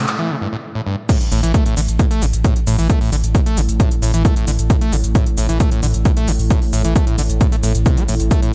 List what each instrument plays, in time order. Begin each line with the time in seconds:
Already playing: ambient pad A2, riser
0.08 clap, closed hi-hat, shaker
0.19 acid bass E3
0.30 acid bass C3
0.41 acid bass G2
0.53 acid bass A2
0.75 acid bass A2
0.87 acid bass G2
1.09 ambient pad A2, acid bass A2, kick, closed hi-hat, crash, shaker
1.21 closed hi-hat
1.32 sub bass A1, acid bass A2, open hi-hat, shaker
1.43 sub bass A1, acid bass E3, closed hi-hat, shaker
1.54 acid bass A3, kick, closed hi-hat, shaker
1.66 acid bass A2, closed hi-hat
1.77 sub bass A1, acid bass D3, open hi-hat, shaker
1.88 sub bass A1, closed hi-hat, shaker
1.99 acid bass A2, kick, closed hi-hat, shaker
2.11 acid bass A3, closed hi-hat, shaker
2.22 sub bass A1, acid bass A2, open hi-hat, shaker
2.33 sub bass A1, closed hi-hat, shaker
2.44 acid bass A2, kick, closed hi-hat, shaker
2.56 closed hi-hat
2.67 sub bass A1, acid bass A2, open hi-hat, shaker
2.78 sub bass A1, acid bass E3, open hi-hat, shaker
2.90 acid bass A3, kick, closed hi-hat, shaker
3.01 acid bass A2, open hi-hat
3.12 sub bass A1, acid bass D3, open hi-hat, shaker
3.23 sub bass A1, closed hi-hat, shaker
3.35 acid bass A2, kick, closed hi-hat, shaker
3.46 acid bass A3, closed hi-hat
3.57 sub bass A1, acid bass A2, open hi-hat, shaker
3.69 sub bass A1, closed hi-hat, shaker
3.80 acid bass A2, kick, closed hi-hat, shaker
3.91 closed hi-hat, shaker
4.02 sub bass A1, acid bass A2, open hi-hat, shaker
4.14 sub bass A1, acid bass E3, closed hi-hat, shaker
4.25 acid bass A3, kick, closed hi-hat, shaker
4.36 acid bass A2, closed hi-hat
4.47 sub bass A1, acid bass D3, open hi-hat, shaker
4.59 sub bass A1, closed hi-hat, shaker
4.70 acid bass A2, kick, closed hi-hat, shaker
4.81 acid bass A3, closed hi-hat
4.92 sub bass A1, acid bass A2, open hi-hat, shaker
5.04 sub bass A1, closed hi-hat, shaker
5.15 acid bass A2, kick, closed hi-hat, shaker
5.26 closed hi-hat
5.38 sub bass A1, acid bass A2, open hi-hat, shaker
5.49 sub bass A1, acid bass E3, closed hi-hat, shaker
5.60 acid bass A3, kick, closed hi-hat, shaker
5.71 acid bass A2, closed hi-hat, shaker
5.83 sub bass A1, acid bass D3, open hi-hat, shaker
5.94 sub bass A1, closed hi-hat, shaker
6.05 acid bass A2, kick, closed hi-hat, shaker
6.17 acid bass A3, closed hi-hat
6.28 sub bass A1, acid bass A2, open hi-hat, shaker
6.39 sub bass A1, open hi-hat, shaker
6.50 acid bass A2, kick, closed hi-hat, shaker
6.62 open hi-hat
6.73 sub bass A1, acid bass A2, open hi-hat, shaker
6.84 sub bass A1, acid bass E3, closed hi-hat, shaker
6.96 acid bass A3, kick, closed hi-hat, shaker
7.07 acid bass A2, closed hi-hat
7.18 sub bass A1, acid bass D3, open hi-hat, shaker
7.30 sub bass A1, closed hi-hat, shaker
7.41 acid bass A2, kick, closed hi-hat, shaker
7.52 acid bass A3, closed hi-hat, shaker
7.63 sub bass A1, acid bass A2, open hi-hat, shaker
7.75 sub bass A1, closed hi-hat, shaker
7.86 acid bass C3, kick, closed hi-hat, shaker
7.97 acid bass A3, closed hi-hat, shaker
8.08 sub bass A1, acid bass A2, open hi-hat, shaker
8.20 sub bass A1, closed hi-hat, shaker
8.31 acid bass A3, kick, closed hi-hat, shaker
8.42 acid bass A2, closed hi-hat